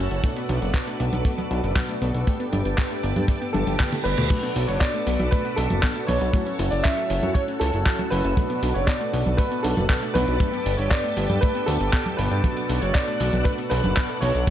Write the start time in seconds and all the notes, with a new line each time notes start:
Already playing: C#5 F#5 A5 E6
0.00 C#4 E4 F#4 A4
0.11 F#1, closed hi-hat
0.24 B2 A3 B3 D4 F#4 A4 B4 A5 D6, kick, closed hi-hat
0.36 B3, closed hi-hat
0.49 B1 D4, closed hi-hat, high conga
0.62 F#1, closed hi-hat
0.74 B3, kick, clap, closed hi-hat
0.87 A3, closed hi-hat
1.00 B1 B3, closed hi-hat
1.13 B1, closed hi-hat, high conga
1.25 A3, kick, closed hi-hat
1.38 B3, closed hi-hat, high conga
1.51 B1 D4, closed hi-hat
1.64 F#1, closed hi-hat
1.76 B3, kick, clap, closed hi-hat, high conga
1.89 A3, closed hi-hat
2.02 B1 G2 B3 D4 F#4 A4, closed hi-hat
2.14 B1, closed hi-hat
2.27 G2 A3 B3 D4 G4 A4 G5 A5 D6, kick, closed hi-hat
2.40 B3, closed hi-hat
2.52 G1 D4, closed hi-hat, high conga
2.65 G1, closed hi-hat
2.78 B3, kick, clap, closed hi-hat
2.91 A3, closed hi-hat
3.03 G1 B3, closed hi-hat
3.16 G2, closed hi-hat, high conga
3.28 A3, kick, closed hi-hat, reverse cymbal
3.41 B3, closed hi-hat
3.53 G1 D4 A4, closed hi-hat, high tom
3.67 G1, closed hi-hat, high tom
3.80 B3, kick, clap, closed hi-hat, mid tom
3.92 G2 A3 B3 D4 G4 A4, closed hi-hat, mid tom
4.04 G1 B2 B3 D4 G4 A4 B4, closed hi-hat
4.18 D2, closed hi-hat, mid tom
4.30 B2 A3 B3 D4 F#4 A4 B4 F#5 A5 D6, kick, closed hi-hat, crash, high conga
4.43 B3, closed hi-hat
4.56 B1 D4, open hi-hat
4.67 F#1 C#5, closed hi-hat
4.80 B3 D5, kick, clap, closed hi-hat
4.94 A3, closed hi-hat
5.07 B1 B3, open hi-hat
5.19 B1, closed hi-hat, high conga
5.31 A3 B4, kick, closed hi-hat
5.45 B3, closed hi-hat
5.56 B1 D4 A4, open hi-hat
5.70 F#1, closed hi-hat, high conga
5.83 B3, kick, clap, closed hi-hat
5.96 A3, closed hi-hat
6.07 B1 B3 D4 F#4 A4 C#5, open hi-hat, high conga
6.21 B1, closed hi-hat
6.34 F#3 A3 C#4 E4 F#4 A4 C#5 A5 E6, kick, closed hi-hat, high conga
6.47 C#4, closed hi-hat
6.59 F#1 E4, open hi-hat
6.70 F#1 D5, closed hi-hat
6.83 C#4 E5, kick, clap, closed hi-hat
6.97 A3, closed hi-hat
7.10 F#1 C#4, open hi-hat
7.23 F#2, closed hi-hat, high conga
7.34 A3 C#5, kick, closed hi-hat
7.48 C#4, closed hi-hat
7.60 C#2 E4 A4, open hi-hat
7.74 F#1, closed hi-hat
7.86 C#4, kick, clap, closed hi-hat
7.99 A3, closed hi-hat, high conga
8.10 F#1 C#4 E4 F#4 A4 B4, open hi-hat
8.25 F#1, closed hi-hat
8.37 B2 A3 B3 D4 F#4 A4 B4 D6, kick, closed hi-hat, high conga
8.50 B3, closed hi-hat
8.63 B1 D4, open hi-hat
8.74 F#1 C#5, closed hi-hat
8.87 B3 D5, kick, clap, closed hi-hat
9.01 A3, closed hi-hat
9.13 B1 B3, open hi-hat
9.26 B1, closed hi-hat, high conga
9.37 A3 B4, kick, closed hi-hat
9.52 B3, closed hi-hat
9.63 B1 D4 A4, open hi-hat
9.77 F#1, closed hi-hat, high conga
9.90 B3, kick, clap, closed hi-hat
10.02 A3, closed hi-hat
10.14 B1 G2 B3 D4 F#4 A4 B4, open hi-hat, high conga
10.28 B1, closed hi-hat
10.40 G2 A3 B3 D4 G4 A4 G5, kick, closed hi-hat, high conga
10.53 B3, closed hi-hat
10.66 G1 D4, open hi-hat
10.77 G1 C#5, closed hi-hat
10.90 B3 D5, kick, clap, closed hi-hat
11.04 A3, closed hi-hat
11.17 G1 B3, open hi-hat
11.30 G2, closed hi-hat, high conga
11.41 A3 B4, kick, closed hi-hat
11.55 B3, closed hi-hat
11.66 D2 D4 A4, open hi-hat
11.80 G1, closed hi-hat
11.93 B3, kick, clap, closed hi-hat
12.06 G2 A3 B3 D4 G4 A4, closed hi-hat, high conga
12.17 G1 B2 B3 D4 G4 A4 B4, open hi-hat
12.31 G2, closed hi-hat
12.44 B2 A3 B3 D4 F#4 A4 B4 F#5, kick, closed hi-hat, high conga, cabasa
12.57 B3, closed hi-hat, cabasa
12.69 B1 D4, open hi-hat, cabasa
12.80 F#1 C#5, closed hi-hat, cabasa
12.93 B3 D5, kick, clap, closed hi-hat, cabasa
13.08 A3, closed hi-hat, cabasa
13.20 B1 B3, open hi-hat, cabasa
13.33 B1, closed hi-hat, high conga, cabasa
13.44 A3 B4, kick, closed hi-hat, cabasa
13.58 B3, closed hi-hat, cabasa
13.70 B1 D4 B4, open hi-hat, cabasa
13.84 F#1, closed hi-hat, high conga, cabasa
13.97 B3, kick, clap, closed hi-hat, cabasa
14.09 A3, closed hi-hat, cabasa
14.20 B1 B3 D4 F#4 A4 C#5, open hi-hat, high conga, cabasa
14.35 B1, closed hi-hat, cabasa